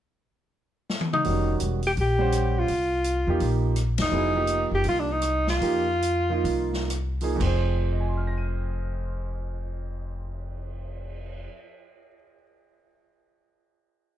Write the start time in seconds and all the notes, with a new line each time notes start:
0.90 snare
1.01 high tom
1.13 D#4, mid tom
1.24 F1 D#3 G3 C#4 F#4, open hi-hat
1.60 E1, closed hi-hat
1.83 open hi-hat
1.87 G4
1.97 A#1 G4, open hi-hat
2.19 G3 C#4 C5 F#5
2.32 cross-stick, closed hi-hat
2.59 F4
2.68 C2, open hi-hat
3.04 closed hi-hat
3.27 E2 F3 A#3 D#4 G4
3.40 A#1, open hi-hat
3.76 cross-stick, closed hi-hat
3.98 E1 D#4, snare, ride
4.11 F1 F#3 B3 E4 G#4
4.35 F3 A#3 D#4 G4
4.47 closed hi-hat
4.71 F#1 G4
4.84 C2, open hi-hat
4.89 F4
4.99 D4
5.12 D#4
5.22 cross-stick, closed hi-hat
5.47 F4, snare
5.61 F2 F3 A#3 D#4 G4, open hi-hat
6.02 closed hi-hat
6.30 F3 A#3 D#4 F4
6.44 C2, open hi-hat
6.73 snare
6.90 cross-stick, closed hi-hat
7.21 F3 A#3 D#4 G#4, open hi-hat
7.36 F2 F3
7.40 F1 C4, kick, crash
7.44 G#4 C5
7.72 cymbal swell
7.92 D#5
8.00 G#5
8.08 C6
8.17 F6
8.27 A#6
8.38 D#7